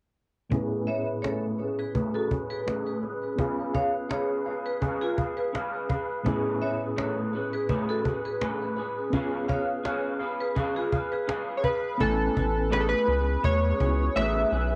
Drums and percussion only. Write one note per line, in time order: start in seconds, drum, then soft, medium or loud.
0.52 cajon bass medium
0.88 cajon slap soft
1.24 cajon slap medium
1.59 cajon slap soft
1.95 cajon bass medium
2.31 cajon bass medium
2.51 cajon slap soft
2.68 cajon slap medium
3.03 cajon slap soft
3.38 cajon bass medium
3.74 cajon bass medium
4.11 cajon slap medium
4.46 cajon slap soft
4.82 cajon bass medium
5.18 cajon bass medium
5.39 cajon slap soft
5.55 cajon slap medium
5.90 cajon bass medium
6.26 cajon bass medium
6.62 cajon slap soft
6.98 cajon slap medium
7.34 cajon slap soft
7.69 cajon bass medium
8.05 cajon bass medium
8.26 cajon slap soft
8.41 cajon slap medium
8.77 cajon slap soft
9.13 cajon bass medium
9.49 cajon bass medium
9.85 cajon slap medium
10.21 cajon slap soft
10.56 cajon bass medium
10.93 cajon bass medium
11.13 cajon slap soft
11.29 cajon slap medium
11.64 cajon bass medium
12.01 cajon bass medium
12.37 cajon bass medium
12.73 cajon slap medium
13.09 cajon slap soft
13.44 cajon bass medium
13.80 cajon bass medium
14.17 cajon slap medium
14.52 cajon slap soft